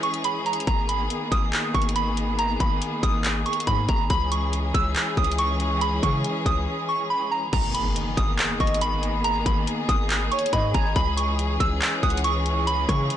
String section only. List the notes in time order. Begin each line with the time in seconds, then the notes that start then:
Already playing: E3 G#3 C#4 G#4
0.67 D#3 A#3 B3
4.10 E3 G#3 C#4 G#4
7.53 D#3 A#3 B3 G#4
10.96 E3 G#3 C#4